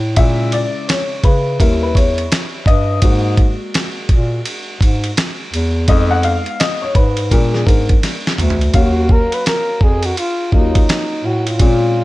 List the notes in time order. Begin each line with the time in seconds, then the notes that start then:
Already playing: A2
0.16 A#2 C#3 G#3 E4 E5, kick, ride
0.52 D5, ride
0.89 C#5, snare, hi-hat pedal, ride
1.24 C#3 B4, kick, ride
1.59 D#2 G3 C#4 E4 A#4, kick, ride
1.83 B4
1.95 E2 C#5, kick, ride
2.18 ride
2.32 snare, hi-hat pedal, ride
2.66 G2 D#5, kick, ride
3.02 G#2 G#3 A#3 F#4, kick, ride
3.37 kick, ride
3.74 snare, hi-hat pedal, ride
4.09 A#2, kick, ride
4.46 ride
4.81 G#2, kick, ride
5.04 ride
5.17 snare, hi-hat pedal, ride
5.53 E2, ride
5.88 F2 G#3 B3 D#4 D#5, kick, ride
6.11 F#5
6.23 F5, ride
6.46 ride
6.60 D#5, snare, hi-hat pedal, ride
6.82 C#5
6.95 G#2 B4, kick, ride
7.17 ride
7.31 A#2 G#3 B3 D4 A#4, kick, ride
7.53 G#4, snare
7.66 G#2 A#4, kick, ride
7.89 kick, ride
8.03 snare, hi-hat pedal, ride
8.27 snare
8.38 D2, mid tom, ride
8.50 floor tom
8.61 ride
8.73 D#2 F#3 A#3 C#4 F#4 F5, kick, ride
9.09 A#4, kick
9.32 B4, ride
9.46 A#4, snare, hi-hat pedal, ride
9.81 F2 G#4, kick
10.03 F#4, ride
10.17 F4, ride
10.52 D#2 F#3 A#3 C#4 D#4 F4, kick
10.75 kick, ride
10.89 snare, hi-hat pedal, ride
11.24 A2 F#4
11.47 F4, ride
11.59 A#2 G#3 C4 C#4 F4, kick, ride